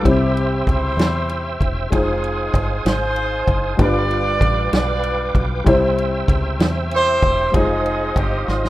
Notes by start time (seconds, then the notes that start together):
Already playing: G5
0.03 C2 C3 G3 C4 E4 C5 E5 E6, kick, ride
0.07 C4 E4 G4 C5
0.37 ride
0.67 C#2 E4 G4 C5, kick, ride
0.97 E2, snare, ride
1.29 ride
1.60 E1, kick, ride
1.90 F1 G#3 D#4 F4 G#4 F5 G#5 D#6, kick, ride
1.94 C4 C5
2.24 ride
2.54 G1, kick, ride
2.85 G#1 D#4 G#4 C5, snare, ride
3.16 ride
3.47 F#1, kick, ride
3.77 G1 G2 G3 D4 F4 B4 D5 F5 G5 D6, kick, ride
3.81 F4 B4
4.11 ride
4.41 A1, kick, ride
4.73 B1 F4 B4 D5, snare, ride
5.03 ride
5.35 B1, kick, ride
5.64 C2 C3 G3 C4 E4 C5 E5 E6, kick, ride
5.69 C5
5.98 ride
6.28 C#2, kick, ride
6.59 E2, snare, ride
6.91 E4 G4 C5, ride
7.22 E1, kick, ride
7.52 F1 G3 D#4 F4 G#4 D#5 F5 D#6, kick, ride
7.56 G#3 C4 D#4 C5
7.86 ride
8.16 G1 G4, kick, ride
8.48 G#1 G#3 C4 F4, snare
8.65 snare